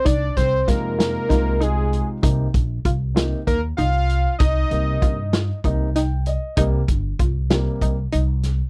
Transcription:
<<
  \new Staff \with { instrumentName = "Analog synth lead" } { \time 7/8 \key c \minor \tempo 4 = 97 d''8 c''8 bes'8 bes'4 aes'8. r16 | r2 bes'8 f''4 | ees''2 r4. | r2. r8 | }
  \new Staff \with { instrumentName = "Synth arpeggio sound" } { \time 7/8 \key c \minor ees'4 f'8 f'8 ees'8 ees'4 | ees'4 f'8 f'8 ees'8 ees'4 | ees'4 f'8 f'8 ees'8 ees'4 | ees'4 f'8 f'8 ees'8 ees'4 | }
  \new Staff \with { instrumentName = "Grand piano" } { \time 7/8 \key c \minor r4 <c aes ees' f'>4 <c aes ees' f'>4. | <c bes ees'>8 r4 <c bes ees'>8 r4. | r8 <c bes ees'>8 r4 <c bes ees'>8 g''8 ees''8 | <c g bes>8 r4 <c g bes>8 r4. | }
  \new Staff \with { instrumentName = "Upright bass" } { \clef bass \time 7/8 \key c \minor c,8 c,8 f,4 c,4. | c,8 bes,,8 c,4 ees,8 c,4 | c,8 c,8 g,4 c,4. | c,8 g,,8 c,4 c,8 c,4 | }
  \new DrumStaff \with { instrumentName = "Drums" } \drummode { \time 7/8 <hh bd>8 <hh bd sn>8 <hh bd sn>8 <hh sn>8 <hh bd sn>8 hh8 hh8 | <hh bd>8 <hh bd>8 <hh bd>8 <hh sn>8 <hh bd>8 hh8 hh8 | <hh bd>8 hh8 <hh bd>8 <hh sn>8 <hh bd>8 <hh sn>8 hh8 | <hh bd>8 <hh bd>8 <hh bd>8 <hh sn>8 <hh bd>8 hh8 <hh sn>8 | }
>>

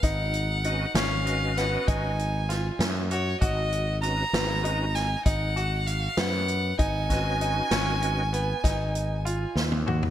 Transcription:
<<
  \new Staff \with { instrumentName = "Violin" } { \time 11/8 \key gis \dorian \tempo 4 = 98 fis''4. eis''4 fis''8 gis''4. r8 cis''8 | dis''4 ais''4. gis''8 fis''4 eis''8 fis''4 | gis''1~ gis''8 r4 | }
  \new Staff \with { instrumentName = "Tonewheel organ" } { \time 11/8 \key gis \dorian r4 <cis' fis' b' dis''>8 r8 <cis' fis' b' dis''>4. r2 | r4 <cis' fis' b' dis''>8 r8 <cis' fis' b' dis''>8 r2. | r8 <cis' fis' b' dis''>4. <cis' fis' b' dis''>8 r2. | }
  \new Staff \with { instrumentName = "Grand piano" } { \time 11/8 \key gis \dorian dis'4 dis'8 cis'4 b8 dis'4 eis'4 fis'8 | fis'4 r8 b8 dis'4 dis'8 fis'4 b4 | dis'4 dis'8 cis'4 b8 dis'4 eis'4 fis'8 | }
  \new Staff \with { instrumentName = "Fretless electric bass" } { \clef bass \time 11/8 \key gis \dorian gis,,4. gis,,4. gis,,4. fis,4 | gis,,4. gis,,4. gis,,4. fis,4 | gis,,4. gis,,4. gis,,4. dis,4 | }
  \new DrumStaff \with { instrumentName = "Drums" } \drummode { \time 11/8 <hh bd>8 hh8 hh8 <hh sn>8 hh8 <hh sn>8 <hh bd>8 hh8 <hh sn>8 <hh sn>8 hh8 | <hh bd>8 hh8 hh8 <hh sn>8 hh8 <hh sn>8 <hh bd>8 hh8 hh8 <hh sn>8 hh8 | <hh bd>8 <hh bd sn>8 hh8 <hh sn>8 hh8 hh8 <hh bd sn>8 hh8 hh8 sn16 tommh16 toml16 tomfh16 | }
>>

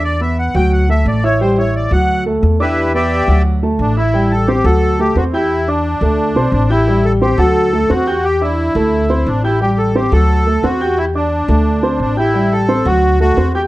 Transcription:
<<
  \new Staff \with { instrumentName = "Grand piano" } { \time 4/4 \key d \mixolydian \tempo 4 = 176 <d' d'' d'''>8 <b b' b''>4 <fis fis' fis''>4 <a a' a''>4 <e' e'' e'''>8 | <g g' g''>8 <e' e'' e'''>4 <fis fis' fis''>4 <a a' a''>4 <d' d'' d'''>8~ | <d' d'' d'''>8 <b b' b''>4 <fis fis' fis''>4 <a a' a''>4 <e' e'' e'''>8 | <g g' g''>4 <c' c'' c'''>8 <fis fis' fis''>4 <a a' a''>8 <c' c'' c'''>8 <g' g'' g'''>8~ |
<g' g'' g'''>8 <d' d'' d'''>4 <a a' a''>4 <c' c'' c'''>4 <g' g'' g'''>8 | <g g' g''>4 <c' c'' c'''>8 <fis fis' fis''>4 <a a' a''>8 <c' c'' c'''>8 <g' g'' g'''>8~ | <g' g'' g'''>8 <d' d'' d'''>4 <a a' a''>4 <c' c'' c'''>4 <g' g'' g'''>8 | <g g' g''>4 <c' c'' c'''>8 <fis fis' fis''>4 <a a' a''>8 <c' c'' c'''>8 <g' g'' g'''>8~ |
<g' g'' g'''>8 <d' d'' d'''>4 <a a' a''>4 <c' c'' c'''>4 <g' g'' g'''>8 | <g g' g''>4 <c' c'' c'''>8 <fis fis' fis''>4 <a a' a''>8 <c' c'' c'''>8 <g' g'' g'''>8 | }
  \new Staff \with { instrumentName = "Accordion" } { \time 4/4 \key d \mixolydian d''8 e''8 fis''8 g''8 fis''8 e''8 d''8 cis''8 | c''8 cis''8 d''8 fis''4 r4 <e' g' b' e''>8~ | <e' g' b' e''>8 <g' d'' e'' g''>4. r4 d'8 e'8~ | e'8 a'8 g'8 a'4 g'8 fis'8 e'8~ |
e'8 d'2~ d'8 d'8 e'8~ | e'8 a'8 g'8 a'4. fis'4 | g'8 e'2~ e'8 d'8 e'8 | g'8 a'8 g'8 a'4. fis'4 |
e'8 d'2~ d'8 d'8 e'8~ | e'8 a'4 fis'4 fis'4 g'8 | }
  \new Staff \with { instrumentName = "Upright bass" } { \clef bass \time 4/4 \key d \mixolydian e,4. d,4. a,,4~ | a,,4. d,4. e,4~ | e,4. d,4. a,,4~ | a,,4. d,4. e,4~ |
e,4. d,4 b,,8 a,,4~ | a,,4. d,4. e,4~ | e,4. d,4. a,,4~ | a,,4. d,4. e,4~ |
e,4. d,4. a,,4~ | a,,4. d,4. e,4 | }
>>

